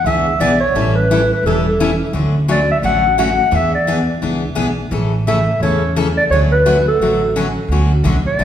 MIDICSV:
0, 0, Header, 1, 5, 480
1, 0, Start_track
1, 0, Key_signature, 2, "major"
1, 0, Tempo, 347625
1, 1023, Time_signature, 4, 2, 24, 8
1, 11654, End_track
2, 0, Start_track
2, 0, Title_t, "Clarinet"
2, 0, Program_c, 0, 71
2, 83, Note_on_c, 0, 76, 98
2, 549, Note_off_c, 0, 76, 0
2, 558, Note_on_c, 0, 74, 89
2, 818, Note_off_c, 0, 74, 0
2, 833, Note_on_c, 0, 73, 92
2, 1317, Note_on_c, 0, 71, 81
2, 1338, Note_off_c, 0, 73, 0
2, 1794, Note_off_c, 0, 71, 0
2, 1835, Note_on_c, 0, 71, 81
2, 2015, Note_on_c, 0, 69, 72
2, 2035, Note_off_c, 0, 71, 0
2, 2766, Note_off_c, 0, 69, 0
2, 3466, Note_on_c, 0, 74, 80
2, 3713, Note_off_c, 0, 74, 0
2, 3745, Note_on_c, 0, 76, 90
2, 3824, Note_off_c, 0, 76, 0
2, 3937, Note_on_c, 0, 78, 97
2, 4368, Note_off_c, 0, 78, 0
2, 4403, Note_on_c, 0, 78, 91
2, 4902, Note_on_c, 0, 76, 103
2, 4923, Note_off_c, 0, 78, 0
2, 5162, Note_off_c, 0, 76, 0
2, 5170, Note_on_c, 0, 74, 77
2, 5608, Note_off_c, 0, 74, 0
2, 7280, Note_on_c, 0, 76, 94
2, 7720, Note_off_c, 0, 76, 0
2, 7760, Note_on_c, 0, 73, 92
2, 8200, Note_off_c, 0, 73, 0
2, 8524, Note_on_c, 0, 74, 88
2, 8609, Note_off_c, 0, 74, 0
2, 8712, Note_on_c, 0, 73, 99
2, 8840, Note_off_c, 0, 73, 0
2, 8999, Note_on_c, 0, 71, 87
2, 9443, Note_off_c, 0, 71, 0
2, 9497, Note_on_c, 0, 69, 83
2, 10390, Note_off_c, 0, 69, 0
2, 11412, Note_on_c, 0, 74, 88
2, 11654, Note_off_c, 0, 74, 0
2, 11654, End_track
3, 0, Start_track
3, 0, Title_t, "Steel-string acoustic guitar"
3, 0, Program_c, 1, 25
3, 80, Note_on_c, 1, 52, 65
3, 83, Note_on_c, 1, 59, 62
3, 91, Note_on_c, 1, 62, 72
3, 93, Note_on_c, 1, 68, 70
3, 352, Note_off_c, 1, 52, 0
3, 353, Note_off_c, 1, 59, 0
3, 357, Note_off_c, 1, 62, 0
3, 358, Note_off_c, 1, 68, 0
3, 556, Note_on_c, 1, 52, 89
3, 562, Note_on_c, 1, 59, 89
3, 566, Note_on_c, 1, 68, 111
3, 569, Note_on_c, 1, 62, 97
3, 698, Note_off_c, 1, 52, 0
3, 701, Note_off_c, 1, 59, 0
3, 703, Note_off_c, 1, 68, 0
3, 704, Note_off_c, 1, 62, 0
3, 1040, Note_on_c, 1, 52, 65
3, 1040, Note_on_c, 1, 55, 62
3, 1043, Note_on_c, 1, 61, 61
3, 1045, Note_on_c, 1, 64, 73
3, 1048, Note_on_c, 1, 69, 71
3, 1311, Note_off_c, 1, 52, 0
3, 1311, Note_off_c, 1, 55, 0
3, 1313, Note_off_c, 1, 61, 0
3, 1314, Note_off_c, 1, 64, 0
3, 1316, Note_off_c, 1, 69, 0
3, 1533, Note_on_c, 1, 52, 80
3, 1533, Note_on_c, 1, 55, 88
3, 1533, Note_on_c, 1, 64, 96
3, 1538, Note_on_c, 1, 61, 83
3, 1541, Note_on_c, 1, 69, 86
3, 1666, Note_off_c, 1, 52, 0
3, 1666, Note_off_c, 1, 55, 0
3, 1666, Note_off_c, 1, 64, 0
3, 1669, Note_off_c, 1, 61, 0
3, 1670, Note_off_c, 1, 69, 0
3, 2015, Note_on_c, 1, 52, 60
3, 2022, Note_on_c, 1, 55, 63
3, 2025, Note_on_c, 1, 64, 61
3, 2030, Note_on_c, 1, 61, 66
3, 2033, Note_on_c, 1, 69, 76
3, 2279, Note_off_c, 1, 52, 0
3, 2282, Note_off_c, 1, 55, 0
3, 2284, Note_off_c, 1, 64, 0
3, 2286, Note_off_c, 1, 61, 0
3, 2288, Note_off_c, 1, 69, 0
3, 2488, Note_on_c, 1, 52, 78
3, 2488, Note_on_c, 1, 55, 84
3, 2490, Note_on_c, 1, 61, 99
3, 2496, Note_on_c, 1, 64, 82
3, 2501, Note_on_c, 1, 69, 91
3, 2624, Note_off_c, 1, 52, 0
3, 2624, Note_off_c, 1, 55, 0
3, 2625, Note_off_c, 1, 61, 0
3, 2628, Note_off_c, 1, 64, 0
3, 2630, Note_off_c, 1, 69, 0
3, 2945, Note_on_c, 1, 50, 64
3, 2946, Note_on_c, 1, 57, 66
3, 2947, Note_on_c, 1, 54, 57
3, 2962, Note_on_c, 1, 61, 65
3, 2964, Note_on_c, 1, 66, 69
3, 3224, Note_off_c, 1, 50, 0
3, 3225, Note_off_c, 1, 54, 0
3, 3225, Note_off_c, 1, 57, 0
3, 3232, Note_off_c, 1, 61, 0
3, 3234, Note_off_c, 1, 66, 0
3, 3428, Note_on_c, 1, 54, 78
3, 3429, Note_on_c, 1, 50, 84
3, 3435, Note_on_c, 1, 57, 89
3, 3436, Note_on_c, 1, 66, 91
3, 3440, Note_on_c, 1, 61, 90
3, 3574, Note_off_c, 1, 50, 0
3, 3574, Note_off_c, 1, 54, 0
3, 3577, Note_off_c, 1, 57, 0
3, 3578, Note_off_c, 1, 66, 0
3, 3580, Note_off_c, 1, 61, 0
3, 3910, Note_on_c, 1, 57, 68
3, 3913, Note_on_c, 1, 50, 62
3, 3913, Note_on_c, 1, 54, 56
3, 3918, Note_on_c, 1, 61, 66
3, 3922, Note_on_c, 1, 66, 67
3, 4187, Note_off_c, 1, 57, 0
3, 4188, Note_off_c, 1, 50, 0
3, 4188, Note_off_c, 1, 54, 0
3, 4191, Note_off_c, 1, 61, 0
3, 4193, Note_off_c, 1, 66, 0
3, 4391, Note_on_c, 1, 54, 93
3, 4393, Note_on_c, 1, 50, 80
3, 4399, Note_on_c, 1, 61, 98
3, 4401, Note_on_c, 1, 66, 89
3, 4403, Note_on_c, 1, 57, 104
3, 4535, Note_off_c, 1, 54, 0
3, 4536, Note_off_c, 1, 50, 0
3, 4539, Note_off_c, 1, 61, 0
3, 4541, Note_off_c, 1, 57, 0
3, 4541, Note_off_c, 1, 66, 0
3, 4851, Note_on_c, 1, 52, 68
3, 4860, Note_on_c, 1, 59, 70
3, 4863, Note_on_c, 1, 62, 64
3, 4868, Note_on_c, 1, 68, 71
3, 5138, Note_off_c, 1, 52, 0
3, 5142, Note_off_c, 1, 59, 0
3, 5143, Note_off_c, 1, 62, 0
3, 5146, Note_off_c, 1, 68, 0
3, 5348, Note_on_c, 1, 52, 89
3, 5360, Note_on_c, 1, 59, 80
3, 5361, Note_on_c, 1, 68, 100
3, 5364, Note_on_c, 1, 62, 92
3, 5494, Note_off_c, 1, 52, 0
3, 5500, Note_off_c, 1, 59, 0
3, 5501, Note_off_c, 1, 68, 0
3, 5502, Note_off_c, 1, 62, 0
3, 5826, Note_on_c, 1, 52, 62
3, 5831, Note_on_c, 1, 59, 64
3, 5837, Note_on_c, 1, 62, 62
3, 5844, Note_on_c, 1, 68, 67
3, 6105, Note_off_c, 1, 52, 0
3, 6108, Note_off_c, 1, 59, 0
3, 6111, Note_off_c, 1, 62, 0
3, 6114, Note_off_c, 1, 68, 0
3, 6286, Note_on_c, 1, 52, 93
3, 6292, Note_on_c, 1, 59, 98
3, 6297, Note_on_c, 1, 68, 86
3, 6298, Note_on_c, 1, 62, 95
3, 6443, Note_off_c, 1, 52, 0
3, 6447, Note_off_c, 1, 59, 0
3, 6449, Note_off_c, 1, 68, 0
3, 6450, Note_off_c, 1, 62, 0
3, 6781, Note_on_c, 1, 49, 67
3, 6784, Note_on_c, 1, 52, 67
3, 6790, Note_on_c, 1, 57, 65
3, 6798, Note_on_c, 1, 61, 65
3, 6798, Note_on_c, 1, 69, 73
3, 7063, Note_off_c, 1, 49, 0
3, 7065, Note_off_c, 1, 52, 0
3, 7068, Note_off_c, 1, 57, 0
3, 7071, Note_off_c, 1, 61, 0
3, 7071, Note_off_c, 1, 69, 0
3, 7278, Note_on_c, 1, 49, 79
3, 7280, Note_on_c, 1, 52, 80
3, 7290, Note_on_c, 1, 57, 89
3, 7290, Note_on_c, 1, 61, 86
3, 7294, Note_on_c, 1, 69, 93
3, 7420, Note_off_c, 1, 49, 0
3, 7421, Note_off_c, 1, 52, 0
3, 7426, Note_off_c, 1, 57, 0
3, 7426, Note_off_c, 1, 61, 0
3, 7428, Note_off_c, 1, 69, 0
3, 7768, Note_on_c, 1, 49, 65
3, 7768, Note_on_c, 1, 61, 66
3, 7771, Note_on_c, 1, 69, 69
3, 7772, Note_on_c, 1, 52, 64
3, 7772, Note_on_c, 1, 57, 64
3, 8037, Note_off_c, 1, 49, 0
3, 8037, Note_off_c, 1, 61, 0
3, 8038, Note_off_c, 1, 69, 0
3, 8039, Note_off_c, 1, 52, 0
3, 8039, Note_off_c, 1, 57, 0
3, 8235, Note_on_c, 1, 49, 90
3, 8235, Note_on_c, 1, 52, 90
3, 8238, Note_on_c, 1, 57, 89
3, 8242, Note_on_c, 1, 69, 101
3, 8248, Note_on_c, 1, 61, 84
3, 8378, Note_off_c, 1, 49, 0
3, 8379, Note_off_c, 1, 52, 0
3, 8380, Note_off_c, 1, 57, 0
3, 8382, Note_off_c, 1, 69, 0
3, 8385, Note_off_c, 1, 61, 0
3, 8727, Note_on_c, 1, 50, 64
3, 8732, Note_on_c, 1, 54, 61
3, 8733, Note_on_c, 1, 61, 74
3, 8735, Note_on_c, 1, 66, 72
3, 8736, Note_on_c, 1, 57, 68
3, 8997, Note_off_c, 1, 50, 0
3, 8999, Note_off_c, 1, 54, 0
3, 8999, Note_off_c, 1, 61, 0
3, 9000, Note_off_c, 1, 66, 0
3, 9001, Note_off_c, 1, 57, 0
3, 9193, Note_on_c, 1, 50, 82
3, 9195, Note_on_c, 1, 57, 87
3, 9196, Note_on_c, 1, 54, 81
3, 9197, Note_on_c, 1, 66, 88
3, 9200, Note_on_c, 1, 61, 90
3, 9338, Note_off_c, 1, 50, 0
3, 9339, Note_off_c, 1, 54, 0
3, 9339, Note_off_c, 1, 57, 0
3, 9340, Note_off_c, 1, 66, 0
3, 9341, Note_off_c, 1, 61, 0
3, 9686, Note_on_c, 1, 50, 62
3, 9692, Note_on_c, 1, 54, 68
3, 9694, Note_on_c, 1, 57, 70
3, 9697, Note_on_c, 1, 61, 61
3, 9704, Note_on_c, 1, 66, 69
3, 9956, Note_off_c, 1, 50, 0
3, 9959, Note_off_c, 1, 54, 0
3, 9960, Note_off_c, 1, 57, 0
3, 9962, Note_off_c, 1, 61, 0
3, 9965, Note_off_c, 1, 66, 0
3, 10160, Note_on_c, 1, 50, 80
3, 10164, Note_on_c, 1, 54, 91
3, 10164, Note_on_c, 1, 57, 84
3, 10169, Note_on_c, 1, 61, 99
3, 10178, Note_on_c, 1, 66, 95
3, 10301, Note_off_c, 1, 50, 0
3, 10303, Note_off_c, 1, 57, 0
3, 10304, Note_off_c, 1, 54, 0
3, 10306, Note_off_c, 1, 61, 0
3, 10310, Note_off_c, 1, 66, 0
3, 10655, Note_on_c, 1, 50, 65
3, 10657, Note_on_c, 1, 61, 71
3, 10660, Note_on_c, 1, 54, 64
3, 10663, Note_on_c, 1, 57, 69
3, 10664, Note_on_c, 1, 66, 69
3, 10920, Note_off_c, 1, 50, 0
3, 10921, Note_off_c, 1, 61, 0
3, 10923, Note_off_c, 1, 54, 0
3, 10924, Note_off_c, 1, 57, 0
3, 10925, Note_off_c, 1, 66, 0
3, 11102, Note_on_c, 1, 50, 91
3, 11117, Note_on_c, 1, 54, 88
3, 11117, Note_on_c, 1, 57, 82
3, 11123, Note_on_c, 1, 61, 90
3, 11126, Note_on_c, 1, 66, 93
3, 11252, Note_off_c, 1, 50, 0
3, 11260, Note_off_c, 1, 54, 0
3, 11260, Note_off_c, 1, 57, 0
3, 11263, Note_off_c, 1, 61, 0
3, 11264, Note_off_c, 1, 66, 0
3, 11585, Note_on_c, 1, 50, 62
3, 11585, Note_on_c, 1, 54, 64
3, 11592, Note_on_c, 1, 61, 70
3, 11594, Note_on_c, 1, 66, 76
3, 11596, Note_on_c, 1, 57, 62
3, 11654, Note_off_c, 1, 50, 0
3, 11654, Note_off_c, 1, 54, 0
3, 11654, Note_off_c, 1, 57, 0
3, 11654, Note_off_c, 1, 61, 0
3, 11654, Note_off_c, 1, 66, 0
3, 11654, End_track
4, 0, Start_track
4, 0, Title_t, "Upright bass"
4, 0, Program_c, 2, 32
4, 61, Note_on_c, 2, 37, 80
4, 470, Note_off_c, 2, 37, 0
4, 542, Note_on_c, 2, 35, 80
4, 951, Note_off_c, 2, 35, 0
4, 1032, Note_on_c, 2, 33, 82
4, 1796, Note_off_c, 2, 33, 0
4, 1977, Note_on_c, 2, 28, 80
4, 2748, Note_off_c, 2, 28, 0
4, 2941, Note_on_c, 2, 38, 83
4, 3710, Note_off_c, 2, 38, 0
4, 3894, Note_on_c, 2, 33, 79
4, 4666, Note_off_c, 2, 33, 0
4, 4856, Note_on_c, 2, 40, 94
4, 5627, Note_off_c, 2, 40, 0
4, 5823, Note_on_c, 2, 37, 76
4, 6232, Note_off_c, 2, 37, 0
4, 6290, Note_on_c, 2, 35, 73
4, 6705, Note_off_c, 2, 35, 0
4, 6782, Note_on_c, 2, 33, 93
4, 7552, Note_off_c, 2, 33, 0
4, 7734, Note_on_c, 2, 40, 83
4, 8507, Note_off_c, 2, 40, 0
4, 8696, Note_on_c, 2, 38, 83
4, 9468, Note_off_c, 2, 38, 0
4, 9658, Note_on_c, 2, 33, 80
4, 10429, Note_off_c, 2, 33, 0
4, 10610, Note_on_c, 2, 38, 82
4, 11083, Note_off_c, 2, 38, 0
4, 11095, Note_on_c, 2, 35, 91
4, 11367, Note_off_c, 2, 35, 0
4, 11582, Note_on_c, 2, 33, 89
4, 11654, Note_off_c, 2, 33, 0
4, 11654, End_track
5, 0, Start_track
5, 0, Title_t, "Muted upright bass strokes"
5, 11384, Note_on_c, 9, 29, 39
5, 11522, Note_off_c, 9, 29, 0
5, 11654, End_track
0, 0, End_of_file